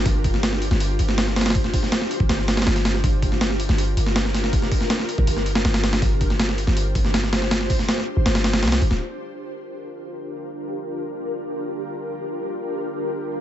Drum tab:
HH |o---o---o---o---o---o---o---oooo|o---o---o---o---o---o-ooo-o-o---|o---o---o---o---o---o---o---o---|o---o---o---o---o---o---o-o-o-o-|
SD |------o-o-o---o-------o-o-o-oooo|--o---o-o-o-----o-o-o-ooo-o-o-o-|------o-o-o---o-------o-o-o-o-o-|--o---o-o-o-------o---o-o-o-o-o-|
BD |o---o---------------------------|o---o---------o-----------------|o---o---------------------------|o---o---------o-----------------|

HH |o---o---o---o---o---o---o---o---|o---o---o-------o-o-o-o-ooo-o---|--------------------------------|--------------------------------|
SD |------o-o-o---o-------o-o-o-o-o-|o-o---o-o-o-----o-o-o-o-ooo---o-|--------------------------------|--------------------------------|
BD |o---o---------------o-----------|----o---------------------------|--------------------------------|--------------------------------|

HH |--------------------------------|
SD |--------------------------------|
BD |--------------------------------|